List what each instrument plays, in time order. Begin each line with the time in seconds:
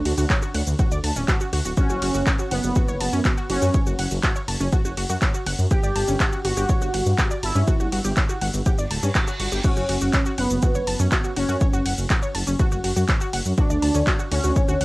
0.05 detuned saw bass D2, synth arpeggio sound F#4, open hi-hat, ride
0.17 detuned saw bass D2, synth arpeggio sound F#4, open hi-hat, shaker
0.30 synth arpeggio sound C#5, kick, clap, ride, shaker
0.42 synth arpeggio sound F#4, shaker
0.54 detuned saw bass D2, synth arpeggio sound F#5, open hi-hat, ride
0.67 detuned saw bass D2, shaker
0.79 synth arpeggio sound F#4, kick, ride, shaker
0.91 detuned saw bass D2, synth arpeggio sound D5, shaker
1.03 detuned saw bass D2, synth arpeggio sound A5, open hi-hat, ride
1.16 detuned saw bass D1, synth arpeggio sound C#4, shaker
1.28 synth arpeggio sound F#4, kick, clap, ride, shaker
1.41 synth arpeggio sound F#4, shaker
1.53 detuned saw bass D2, synth arpeggio sound F#4, open hi-hat, ride
1.65 detuned saw bass D1, synth arpeggio sound F#4, shaker
1.77 analog polysynth C#4, synth arpeggio sound F#4, kick, ride, shaker
1.90 detuned saw bass F#1, synth arpeggio sound F#4, shaker
2.02 detuned saw bass F#1, synth arpeggio sound F#4, open hi-hat, ride
2.14 detuned saw bass F#1, synth arpeggio sound F#4, shaker
2.27 synth arpeggio sound C#5, kick, clap, ride, shaker
2.39 synth arpeggio sound F#4, shaker
2.51 detuned saw bass F#1, analog polysynth B3, synth arpeggio sound F#5, open hi-hat, ride
2.64 detuned saw bass F#1, shaker
2.76 synth arpeggio sound F#4, kick, ride, shaker
2.88 detuned saw bass F#1, synth arpeggio sound C#5, shaker
3.00 detuned saw bass F#1, synth arpeggio sound A5, open hi-hat, ride
3.13 detuned saw bass F#2, synth arpeggio sound C#4, shaker
3.25 synth arpeggio sound F#4, kick, clap, ride, shaker
3.37 synth arpeggio sound F#4, shaker
3.49 detuned saw bass F#1, analog polysynth C#4, synth arpeggio sound F#4, open hi-hat, ride
3.62 detuned saw bass F#2, synth arpeggio sound F#4, shaker
3.74 synth arpeggio sound C#5, kick, ride, shaker
3.86 detuned saw bass F#1, synth arpeggio sound F#4, shaker
3.99 detuned saw bass F#1, synth arpeggio sound F#5, open hi-hat, ride
4.11 detuned saw bass F#1, open hi-hat, shaker
4.23 synth arpeggio sound F#4, kick, clap, ride, shaker
4.36 synth arpeggio sound C#5, shaker
4.48 detuned saw bass F#1, synth arpeggio sound A5, open hi-hat, ride
4.60 detuned saw bass F#1, synth arpeggio sound C#4, shaker
4.73 synth arpeggio sound F#4, kick, ride, shaker
4.85 detuned saw bass F#1, synth arpeggio sound F#4, shaker
4.97 detuned saw bass F#1, synth arpeggio sound F#4, open hi-hat, ride
5.09 detuned saw bass F#2, synth arpeggio sound F#4, shaker
5.22 synth arpeggio sound C#5, kick, clap, ride, shaker
5.34 synth arpeggio sound F#4, shaker
5.46 detuned saw bass F#1, synth arpeggio sound F#5, open hi-hat, ride
5.59 detuned saw bass F#2, shaker
5.71 analog polysynth G4, synth arpeggio sound G4, kick, ride, shaker
5.83 detuned saw bass G1, synth arpeggio sound D5, shaker
5.96 detuned saw bass G1, synth arpeggio sound A5, open hi-hat, ride
6.08 detuned saw bass G1, synth arpeggio sound C#4, shaker
6.20 synth arpeggio sound F#4, kick, clap, ride, shaker
6.33 synth arpeggio sound F#4, shaker
6.45 detuned saw bass G1, synth arpeggio sound F#4, analog polysynth F#4, open hi-hat, ride
6.57 detuned saw bass G1, synth arpeggio sound G4, shaker
6.69 synth arpeggio sound C#5, kick, ride, shaker
6.81 detuned saw bass G1, synth arpeggio sound F#4, shaker
6.94 detuned saw bass G1, synth arpeggio sound F#5, open hi-hat, ride
7.06 detuned saw bass G2, shaker
7.18 synth arpeggio sound G4, kick, clap, ride, shaker
7.31 synth arpeggio sound D5, shaker
7.43 detuned saw bass G1, analog polysynth E4, synth arpeggio sound A5, open hi-hat, ride
7.55 detuned saw bass G2, synth arpeggio sound C#4, shaker
7.68 synth arpeggio sound F#4, kick, ride, shaker
7.80 detuned saw bass G1, synth arpeggio sound F#4, shaker
7.92 detuned saw bass G1, synth arpeggio sound F#4, open hi-hat, ride
8.05 detuned saw bass G1, synth arpeggio sound G4, open hi-hat, shaker
8.17 synth arpeggio sound C#5, kick, clap, ride, shaker
8.29 synth arpeggio sound F#4, shaker
8.41 detuned saw bass G1, synth arpeggio sound F#5, open hi-hat, ride
8.54 detuned saw bass G1, shaker
8.66 synth arpeggio sound G4, kick, ride, reverse cymbal, shaker
8.78 detuned saw bass G1, synth arpeggio sound D5, shaker
8.91 detuned saw bass D1, synth arpeggio sound A5, open hi-hat, ride
9.03 detuned saw bass G2, synth arpeggio sound C#4, shaker
9.15 synth arpeggio sound F#4, kick, clap, ride, shaker
9.27 synth arpeggio sound F#4, shaker
9.40 detuned saw bass G1, synth arpeggio sound F#4, open hi-hat, ride
9.52 detuned saw bass G1, synth arpeggio sound G4, shaker
9.64 analog polysynth C#4, synth arpeggio sound F#4, kick, crash, ride, shaker
9.77 detuned saw bass F#1, synth arpeggio sound F#4, shaker
9.89 detuned saw bass F#1, synth arpeggio sound F#4, open hi-hat, ride
10.01 detuned saw bass F#1, synth arpeggio sound F#4, shaker
10.13 synth arpeggio sound C#5, kick, clap, ride, shaker
10.26 synth arpeggio sound F#4, shaker
10.38 detuned saw bass F#1, analog polysynth B3, synth arpeggio sound F#5, open hi-hat, ride
10.50 detuned saw bass F#1, shaker
10.63 synth arpeggio sound F#4, kick, ride, shaker
10.75 detuned saw bass F#1, synth arpeggio sound C#5, shaker
10.87 detuned saw bass F#1, synth arpeggio sound A5, open hi-hat, ride
10.99 detuned saw bass F#2, synth arpeggio sound C#4, shaker
11.12 synth arpeggio sound F#4, kick, clap, ride, shaker
11.24 synth arpeggio sound F#4, shaker
11.36 detuned saw bass F#1, analog polysynth C#4, synth arpeggio sound F#4, open hi-hat, ride
11.49 detuned saw bass F#2, synth arpeggio sound F#4, shaker
11.61 synth arpeggio sound C#5, kick, ride, shaker
11.73 detuned saw bass F#1, synth arpeggio sound F#4, shaker
11.86 detuned saw bass F#1, synth arpeggio sound F#5, open hi-hat, ride
11.98 detuned saw bass F#1, open hi-hat, shaker
12.10 synth arpeggio sound F#4, kick, clap, ride, shaker
12.22 synth arpeggio sound C#5, shaker
12.35 detuned saw bass F#1, synth arpeggio sound A5, open hi-hat, ride
12.47 detuned saw bass F#1, synth arpeggio sound C#4, shaker
12.59 synth arpeggio sound F#4, kick, ride, shaker
12.72 detuned saw bass F#1, synth arpeggio sound F#4, shaker
12.84 detuned saw bass F#1, synth arpeggio sound F#4, open hi-hat, ride
12.96 detuned saw bass F#2, synth arpeggio sound F#4, shaker
13.08 synth arpeggio sound C#5, kick, clap, ride, shaker
13.21 synth arpeggio sound F#4, shaker
13.33 detuned saw bass F#1, synth arpeggio sound F#5, open hi-hat, ride
13.46 detuned saw bass F#2, shaker
13.58 analog polysynth D4, synth arpeggio sound F#4, kick, ride, shaker
13.70 detuned saw bass D2, synth arpeggio sound D5, shaker
13.82 detuned saw bass D2, synth arpeggio sound A5, open hi-hat, ride
13.95 detuned saw bass D2, synth arpeggio sound C#4, shaker
14.07 synth arpeggio sound F#4, kick, clap, ride, shaker
14.19 synth arpeggio sound F#4, shaker
14.31 detuned saw bass D2, analog polysynth C#4, synth arpeggio sound F#4, open hi-hat, ride
14.44 detuned saw bass D2, synth arpeggio sound F#4, shaker
14.56 synth arpeggio sound C#5, kick, ride, shaker
14.68 detuned saw bass D2, synth arpeggio sound F#4, shaker
14.81 detuned saw bass D2, synth arpeggio sound F#5, open hi-hat, ride